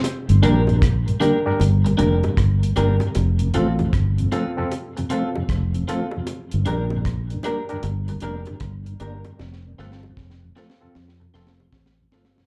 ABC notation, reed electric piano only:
X:1
M:4/4
L:1/16
Q:"Swing 16ths" 1/4=77
K:Gm
V:1 name="Reed electric piano"
z2 [DGB] z3 [DGB] [DGB] z [GB] [DGB] z3 [DGB] z | z2 [CFA] z3 [CFA] [CFA] z [FA] [CFA] z3 [CFA] z | z2 [DGB] z3 [DGB] [DGB] z [GB] [DGB] z3 [DGB] z | z2 [CFA] z3 [CFA] [CFA] z [FA] [CFA] z3 [CFA] z |]